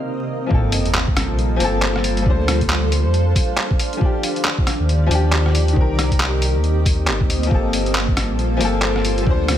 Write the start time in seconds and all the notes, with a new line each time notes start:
Already playing: C3 A#3 C4 D#4 A#4 C5 D#5 F5
0.46 F3 G3 A#3 A4, sub drop
0.50 G1 A#3 C4 F4 A4 C5, kick
0.72 open hi-hat
0.86 closed hi-hat
0.95 clap
1.08 kick
1.17 cross-stick, open hi-hat
1.29 A#1
1.39 closed hi-hat
1.56 G1 F3 A#3, open hi-hat
1.62 C4 A4
1.82 clap
1.96 cross-stick
2.04 open hi-hat
2.17 closed hi-hat
2.22 F3
2.26 D2 D4 C5 F5, kick
2.48 cross-stick, open hi-hat
2.61 kick, closed hi-hat
2.70 clap
2.92 open hi-hat
3.04 F2
3.14 closed hi-hat
3.36 kick, open hi-hat
3.58 clap
3.71 kick
3.79 open hi-hat
3.93 closed hi-hat
3.97 D#3 F3 D4
4.01 G4 D5, kick
4.23 open hi-hat
4.36 closed hi-hat
4.45 clap
4.58 kick
4.67 cross-stick, open hi-hat
4.80 D#2
4.89 closed hi-hat
5.06 D#2 F3 D4
5.11 G4, open hi-hat
5.33 clap
5.46 cross-stick
5.55 open hi-hat
5.68 closed hi-hat
5.73 C2 D#3, kick
5.77 A#3 C4 A#4 D#5
5.99 cross-stick, open hi-hat
6.11 kick, closed hi-hat
6.20 clap
6.42 open hi-hat
6.55 D#2
6.64 closed hi-hat
6.86 kick, open hi-hat
7.07 G1, clap
7.21 kick
7.29 D2, open hi-hat
7.43 F3, closed hi-hat
7.50 G1 G3 A#3 C4 F4 A4 C5, kick
7.54 A4
7.73 open hi-hat
7.86 closed hi-hat
7.95 clap
8.08 kick
8.17 cross-stick, open hi-hat
8.30 A#1
8.39 closed hi-hat
8.57 G1 F3 A#3, open hi-hat
8.62 C4 A4
8.82 clap
8.96 cross-stick
9.05 open hi-hat
9.18 closed hi-hat
9.22 D2 F3 D4 F5
9.27 C5, kick
9.48 cross-stick, open hi-hat